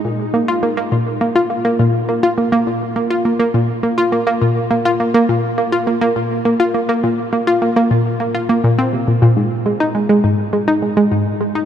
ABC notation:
X:1
M:4/4
L:1/16
Q:1/4=103
K:Ab
V:1 name="Synth arpeggio sound"
B,, z B, F B, B, B,, z B, F B, B, B,, z B, F | B, B, B,, z B, F B, B, B,, z B, F B, B, B,, z | B, F B, B, B,, z B, F B, B, B,, z B, F B, B, | B,, z B, F B, B, B,, z B, F B, B,, C C, B,, B,, |
A,, z A, E A, A, A,, z A, E A, A, A,, z A, E |]